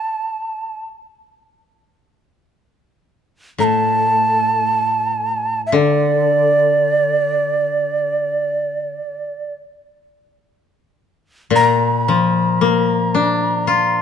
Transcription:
0.00 0.86 A5 medium
3.58 5.73 A2 soft
3.58 3.65 A#5 medium
3.64 5.61 A5 medium
5.67 5.77 E5 soft
5.72 8.96 D3 soft
5.72 9.55 D5 medium
11.50 14.02 A#2 medium
11.56 14.02 A#5 medium
12.08 14.02 F3 soft
12.61 14.02 A#3 soft
13.15 14.02 D4 soft
13.67 14.02 F4 soft

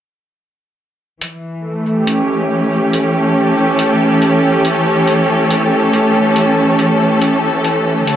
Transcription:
1.21 8.07 E3 medium
1.21 closed hi-hat soft
1.63 8.16 A3 medium
1.95 8.07 G4 medium
2.06 8.16 C#4 medium
2.06 closed hi-hat soft
2.93 closed hi-hat soft
3.21 8.16 A4 medium
3.79 closed hi-hat soft
4.22 closed hi-hat soft
4.65 closed hi-hat soft
5.07 closed hi-hat soft
5.50 closed hi-hat soft
5.93 closed hi-hat soft
6.36 closed hi-hat soft
6.79 closed hi-hat soft
7.22 closed hi-hat soft
7.64 closed hi-hat soft
8.07 8.16 D3 medium
8.07 closed hi-hat soft

